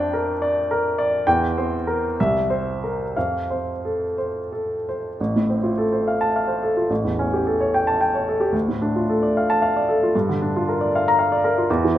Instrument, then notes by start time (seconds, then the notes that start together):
grand piano
Already playing: F2 D4 D5 G5
0.13 A#4
0.42 D5
0.71 A#4
0.98 D5
1.27 E2 G5
1.58 C4 C5
1.87 A#4
2.20 C2 E5
2.50 C4 C5
2.84 A#4
3.17 F2 F5
3.50 C4 C5
3.85 A4
4.18 C5
4.52 A4
4.89 C5
5.20 A1
5.36 A2
5.49 C4
5.63 F4
5.78 A4
5.93 C5
6.08 F5
6.21 A5
6.36 F5
6.47 C5
6.63 A4
6.77 F4
6.90 A1
7.04 E2
7.19 C#4
7.33 G4
7.47 A4
7.60 C#5
7.74 G5
7.87 A5
8.01 G5
8.15 C#5
8.29 A4
8.40 G4
8.52 D2
8.68 A2
8.82 D4
8.96 F4
9.09 A4
9.23 D5
9.37 F5
9.50 A5
9.62 F5
9.77 D5
9.89 A4
10.03 F4
10.15 G2
10.29 D3
10.42 D4
10.56 F4
10.69 A#4
10.81 D5
10.95 F5
11.08 A#5
11.19 F5
11.32 D5
11.44 A#4
11.58 F4
11.70 E2
11.85 E3